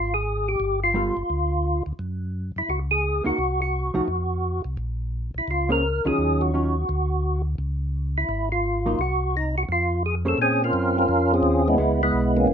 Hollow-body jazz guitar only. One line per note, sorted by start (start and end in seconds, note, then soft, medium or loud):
0.94 1.14 G3 medium
0.94 1.14 B3 soft
0.94 1.14 F4 medium
0.94 1.15 A4 soft
3.24 3.37 A#3 medium
3.24 3.38 D#4 medium
3.24 3.38 F#4 medium
3.94 4.07 F3 medium
3.94 4.07 A3 medium
3.94 4.07 D#4 medium
3.94 4.07 F#4 medium
5.69 5.82 A#3 soft
5.69 5.82 C#4 medium
5.69 5.82 G#4 medium
5.69 5.82 C5 medium
6.05 6.51 D#3 medium
6.05 6.51 F#3 medium
6.05 6.51 C#4 medium
6.05 6.51 F4 medium
6.54 6.73 D#3 soft
6.54 6.73 F#3 soft
6.54 6.74 C#4 soft
6.54 6.74 F4 medium
8.86 8.97 F#3 medium
8.86 8.98 A#3 medium
8.86 8.98 D#4 medium
10.25 10.37 A#3 medium
10.25 10.37 C#4 medium
10.25 10.37 G#4 medium
10.25 10.38 C5 medium
11.78 11.98 G#3 medium
11.78 11.98 B3 medium
11.78 11.99 E4 medium